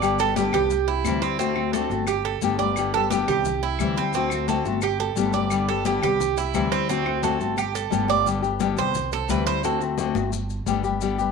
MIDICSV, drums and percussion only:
0, 0, Header, 1, 2, 480
1, 0, Start_track
1, 0, Key_signature, 1, "major"
1, 0, Tempo, 343446
1, 22, Time_signature, 4, 2, 24, 8
1, 15817, End_track
2, 0, Start_track
2, 0, Title_t, "Drums"
2, 29, Note_on_c, 9, 75, 68
2, 35, Note_on_c, 9, 70, 65
2, 169, Note_off_c, 9, 75, 0
2, 174, Note_off_c, 9, 70, 0
2, 265, Note_on_c, 9, 70, 62
2, 280, Note_on_c, 9, 63, 37
2, 405, Note_off_c, 9, 70, 0
2, 420, Note_off_c, 9, 63, 0
2, 506, Note_on_c, 9, 63, 97
2, 513, Note_on_c, 9, 70, 71
2, 646, Note_off_c, 9, 63, 0
2, 652, Note_off_c, 9, 70, 0
2, 740, Note_on_c, 9, 75, 68
2, 746, Note_on_c, 9, 70, 31
2, 759, Note_on_c, 9, 63, 32
2, 759, Note_on_c, 9, 64, 77
2, 880, Note_off_c, 9, 75, 0
2, 886, Note_off_c, 9, 70, 0
2, 899, Note_off_c, 9, 63, 0
2, 899, Note_off_c, 9, 64, 0
2, 981, Note_on_c, 9, 70, 69
2, 985, Note_on_c, 9, 63, 34
2, 1121, Note_off_c, 9, 70, 0
2, 1125, Note_off_c, 9, 63, 0
2, 1222, Note_on_c, 9, 63, 36
2, 1361, Note_off_c, 9, 63, 0
2, 1461, Note_on_c, 9, 63, 71
2, 1463, Note_on_c, 9, 75, 62
2, 1469, Note_on_c, 9, 70, 71
2, 1600, Note_off_c, 9, 63, 0
2, 1603, Note_off_c, 9, 75, 0
2, 1609, Note_off_c, 9, 70, 0
2, 1703, Note_on_c, 9, 63, 29
2, 1714, Note_on_c, 9, 70, 27
2, 1843, Note_off_c, 9, 63, 0
2, 1854, Note_off_c, 9, 70, 0
2, 1950, Note_on_c, 9, 63, 37
2, 1958, Note_on_c, 9, 70, 66
2, 2090, Note_off_c, 9, 63, 0
2, 2098, Note_off_c, 9, 70, 0
2, 2176, Note_on_c, 9, 75, 65
2, 2183, Note_on_c, 9, 63, 35
2, 2316, Note_off_c, 9, 75, 0
2, 2323, Note_off_c, 9, 63, 0
2, 2423, Note_on_c, 9, 63, 83
2, 2434, Note_on_c, 9, 70, 72
2, 2563, Note_off_c, 9, 63, 0
2, 2573, Note_off_c, 9, 70, 0
2, 2664, Note_on_c, 9, 63, 34
2, 2669, Note_on_c, 9, 70, 29
2, 2803, Note_off_c, 9, 63, 0
2, 2808, Note_off_c, 9, 70, 0
2, 2888, Note_on_c, 9, 75, 60
2, 2897, Note_on_c, 9, 70, 72
2, 2901, Note_on_c, 9, 63, 34
2, 3028, Note_off_c, 9, 75, 0
2, 3036, Note_off_c, 9, 70, 0
2, 3041, Note_off_c, 9, 63, 0
2, 3142, Note_on_c, 9, 63, 37
2, 3282, Note_off_c, 9, 63, 0
2, 3378, Note_on_c, 9, 70, 71
2, 3380, Note_on_c, 9, 63, 78
2, 3518, Note_off_c, 9, 70, 0
2, 3520, Note_off_c, 9, 63, 0
2, 3617, Note_on_c, 9, 70, 30
2, 3626, Note_on_c, 9, 63, 74
2, 3757, Note_off_c, 9, 70, 0
2, 3765, Note_off_c, 9, 63, 0
2, 3856, Note_on_c, 9, 63, 35
2, 3856, Note_on_c, 9, 75, 66
2, 3864, Note_on_c, 9, 70, 70
2, 3996, Note_off_c, 9, 63, 0
2, 3996, Note_off_c, 9, 75, 0
2, 4003, Note_off_c, 9, 70, 0
2, 4095, Note_on_c, 9, 63, 37
2, 4235, Note_off_c, 9, 63, 0
2, 4341, Note_on_c, 9, 63, 86
2, 4353, Note_on_c, 9, 70, 76
2, 4480, Note_off_c, 9, 63, 0
2, 4493, Note_off_c, 9, 70, 0
2, 4583, Note_on_c, 9, 75, 62
2, 4588, Note_on_c, 9, 63, 33
2, 4588, Note_on_c, 9, 64, 76
2, 4592, Note_on_c, 9, 70, 31
2, 4722, Note_off_c, 9, 75, 0
2, 4728, Note_off_c, 9, 63, 0
2, 4728, Note_off_c, 9, 64, 0
2, 4731, Note_off_c, 9, 70, 0
2, 4819, Note_on_c, 9, 70, 73
2, 4830, Note_on_c, 9, 63, 35
2, 4830, Note_on_c, 9, 64, 70
2, 4958, Note_off_c, 9, 70, 0
2, 4970, Note_off_c, 9, 63, 0
2, 4970, Note_off_c, 9, 64, 0
2, 5071, Note_on_c, 9, 63, 35
2, 5210, Note_off_c, 9, 63, 0
2, 5296, Note_on_c, 9, 75, 61
2, 5308, Note_on_c, 9, 63, 68
2, 5311, Note_on_c, 9, 70, 71
2, 5435, Note_off_c, 9, 75, 0
2, 5448, Note_off_c, 9, 63, 0
2, 5450, Note_off_c, 9, 70, 0
2, 5549, Note_on_c, 9, 63, 30
2, 5550, Note_on_c, 9, 70, 30
2, 5689, Note_off_c, 9, 63, 0
2, 5690, Note_off_c, 9, 70, 0
2, 5776, Note_on_c, 9, 70, 67
2, 5792, Note_on_c, 9, 63, 32
2, 5916, Note_off_c, 9, 70, 0
2, 5932, Note_off_c, 9, 63, 0
2, 6011, Note_on_c, 9, 75, 69
2, 6029, Note_on_c, 9, 70, 63
2, 6031, Note_on_c, 9, 63, 35
2, 6151, Note_off_c, 9, 75, 0
2, 6169, Note_off_c, 9, 70, 0
2, 6171, Note_off_c, 9, 63, 0
2, 6262, Note_on_c, 9, 63, 85
2, 6268, Note_on_c, 9, 70, 67
2, 6402, Note_off_c, 9, 63, 0
2, 6408, Note_off_c, 9, 70, 0
2, 6506, Note_on_c, 9, 70, 32
2, 6645, Note_off_c, 9, 70, 0
2, 6730, Note_on_c, 9, 70, 72
2, 6736, Note_on_c, 9, 75, 65
2, 6742, Note_on_c, 9, 63, 34
2, 6870, Note_off_c, 9, 70, 0
2, 6876, Note_off_c, 9, 75, 0
2, 6882, Note_off_c, 9, 63, 0
2, 6984, Note_on_c, 9, 63, 37
2, 7124, Note_off_c, 9, 63, 0
2, 7219, Note_on_c, 9, 70, 78
2, 7223, Note_on_c, 9, 63, 74
2, 7359, Note_off_c, 9, 70, 0
2, 7363, Note_off_c, 9, 63, 0
2, 7447, Note_on_c, 9, 70, 29
2, 7461, Note_on_c, 9, 63, 79
2, 7586, Note_off_c, 9, 70, 0
2, 7600, Note_off_c, 9, 63, 0
2, 7692, Note_on_c, 9, 75, 67
2, 7696, Note_on_c, 9, 70, 70
2, 7704, Note_on_c, 9, 63, 37
2, 7831, Note_off_c, 9, 75, 0
2, 7836, Note_off_c, 9, 70, 0
2, 7844, Note_off_c, 9, 63, 0
2, 7940, Note_on_c, 9, 63, 35
2, 8080, Note_off_c, 9, 63, 0
2, 8178, Note_on_c, 9, 63, 90
2, 8181, Note_on_c, 9, 70, 65
2, 8318, Note_off_c, 9, 63, 0
2, 8321, Note_off_c, 9, 70, 0
2, 8421, Note_on_c, 9, 75, 68
2, 8425, Note_on_c, 9, 63, 34
2, 8425, Note_on_c, 9, 64, 78
2, 8430, Note_on_c, 9, 70, 32
2, 8561, Note_off_c, 9, 75, 0
2, 8565, Note_off_c, 9, 63, 0
2, 8565, Note_off_c, 9, 64, 0
2, 8570, Note_off_c, 9, 70, 0
2, 8667, Note_on_c, 9, 63, 36
2, 8667, Note_on_c, 9, 64, 75
2, 8675, Note_on_c, 9, 70, 69
2, 8806, Note_off_c, 9, 63, 0
2, 8806, Note_off_c, 9, 64, 0
2, 8815, Note_off_c, 9, 70, 0
2, 8905, Note_on_c, 9, 63, 38
2, 8906, Note_on_c, 9, 70, 60
2, 9045, Note_off_c, 9, 63, 0
2, 9046, Note_off_c, 9, 70, 0
2, 9143, Note_on_c, 9, 70, 67
2, 9144, Note_on_c, 9, 63, 78
2, 9150, Note_on_c, 9, 75, 63
2, 9283, Note_off_c, 9, 70, 0
2, 9284, Note_off_c, 9, 63, 0
2, 9289, Note_off_c, 9, 75, 0
2, 9386, Note_on_c, 9, 63, 30
2, 9392, Note_on_c, 9, 70, 30
2, 9526, Note_off_c, 9, 63, 0
2, 9531, Note_off_c, 9, 70, 0
2, 9626, Note_on_c, 9, 63, 36
2, 9636, Note_on_c, 9, 70, 68
2, 9765, Note_off_c, 9, 63, 0
2, 9776, Note_off_c, 9, 70, 0
2, 9867, Note_on_c, 9, 75, 69
2, 9876, Note_on_c, 9, 63, 34
2, 10007, Note_off_c, 9, 75, 0
2, 10016, Note_off_c, 9, 63, 0
2, 10107, Note_on_c, 9, 63, 85
2, 10109, Note_on_c, 9, 70, 67
2, 10247, Note_off_c, 9, 63, 0
2, 10249, Note_off_c, 9, 70, 0
2, 10344, Note_on_c, 9, 63, 35
2, 10348, Note_on_c, 9, 70, 31
2, 10484, Note_off_c, 9, 63, 0
2, 10488, Note_off_c, 9, 70, 0
2, 10588, Note_on_c, 9, 63, 33
2, 10590, Note_on_c, 9, 75, 67
2, 10591, Note_on_c, 9, 70, 66
2, 10727, Note_off_c, 9, 63, 0
2, 10730, Note_off_c, 9, 75, 0
2, 10731, Note_off_c, 9, 70, 0
2, 10830, Note_on_c, 9, 63, 38
2, 10836, Note_on_c, 9, 70, 63
2, 10969, Note_off_c, 9, 63, 0
2, 10976, Note_off_c, 9, 70, 0
2, 11071, Note_on_c, 9, 63, 77
2, 11077, Note_on_c, 9, 70, 74
2, 11211, Note_off_c, 9, 63, 0
2, 11217, Note_off_c, 9, 70, 0
2, 11297, Note_on_c, 9, 63, 78
2, 11313, Note_on_c, 9, 70, 28
2, 11437, Note_off_c, 9, 63, 0
2, 11453, Note_off_c, 9, 70, 0
2, 11542, Note_on_c, 9, 63, 37
2, 11553, Note_on_c, 9, 70, 69
2, 11682, Note_off_c, 9, 63, 0
2, 11692, Note_off_c, 9, 70, 0
2, 11787, Note_on_c, 9, 63, 33
2, 11790, Note_on_c, 9, 70, 31
2, 11927, Note_off_c, 9, 63, 0
2, 11930, Note_off_c, 9, 70, 0
2, 12017, Note_on_c, 9, 70, 67
2, 12026, Note_on_c, 9, 63, 90
2, 12157, Note_off_c, 9, 70, 0
2, 12166, Note_off_c, 9, 63, 0
2, 12256, Note_on_c, 9, 70, 30
2, 12278, Note_on_c, 9, 63, 36
2, 12278, Note_on_c, 9, 64, 74
2, 12396, Note_off_c, 9, 70, 0
2, 12418, Note_off_c, 9, 63, 0
2, 12418, Note_off_c, 9, 64, 0
2, 12501, Note_on_c, 9, 70, 69
2, 12512, Note_on_c, 9, 63, 33
2, 12512, Note_on_c, 9, 64, 72
2, 12641, Note_off_c, 9, 70, 0
2, 12652, Note_off_c, 9, 63, 0
2, 12652, Note_off_c, 9, 64, 0
2, 12746, Note_on_c, 9, 70, 27
2, 12757, Note_on_c, 9, 63, 38
2, 12886, Note_off_c, 9, 70, 0
2, 12897, Note_off_c, 9, 63, 0
2, 12985, Note_on_c, 9, 70, 75
2, 12986, Note_on_c, 9, 63, 82
2, 13124, Note_off_c, 9, 70, 0
2, 13125, Note_off_c, 9, 63, 0
2, 13233, Note_on_c, 9, 70, 28
2, 13373, Note_off_c, 9, 70, 0
2, 13468, Note_on_c, 9, 63, 34
2, 13471, Note_on_c, 9, 70, 68
2, 13608, Note_off_c, 9, 63, 0
2, 13610, Note_off_c, 9, 70, 0
2, 13708, Note_on_c, 9, 63, 35
2, 13710, Note_on_c, 9, 70, 31
2, 13848, Note_off_c, 9, 63, 0
2, 13850, Note_off_c, 9, 70, 0
2, 13943, Note_on_c, 9, 63, 86
2, 13949, Note_on_c, 9, 70, 70
2, 14082, Note_off_c, 9, 63, 0
2, 14089, Note_off_c, 9, 70, 0
2, 14185, Note_on_c, 9, 63, 96
2, 14195, Note_on_c, 9, 70, 30
2, 14325, Note_off_c, 9, 63, 0
2, 14334, Note_off_c, 9, 70, 0
2, 14432, Note_on_c, 9, 70, 71
2, 14434, Note_on_c, 9, 63, 35
2, 14572, Note_off_c, 9, 70, 0
2, 14574, Note_off_c, 9, 63, 0
2, 14671, Note_on_c, 9, 70, 30
2, 14675, Note_on_c, 9, 63, 36
2, 14810, Note_off_c, 9, 70, 0
2, 14815, Note_off_c, 9, 63, 0
2, 14905, Note_on_c, 9, 63, 76
2, 14913, Note_on_c, 9, 70, 75
2, 15045, Note_off_c, 9, 63, 0
2, 15053, Note_off_c, 9, 70, 0
2, 15142, Note_on_c, 9, 63, 64
2, 15148, Note_on_c, 9, 70, 30
2, 15282, Note_off_c, 9, 63, 0
2, 15288, Note_off_c, 9, 70, 0
2, 15388, Note_on_c, 9, 70, 66
2, 15391, Note_on_c, 9, 63, 36
2, 15528, Note_off_c, 9, 70, 0
2, 15531, Note_off_c, 9, 63, 0
2, 15621, Note_on_c, 9, 63, 35
2, 15638, Note_on_c, 9, 70, 31
2, 15761, Note_off_c, 9, 63, 0
2, 15778, Note_off_c, 9, 70, 0
2, 15817, End_track
0, 0, End_of_file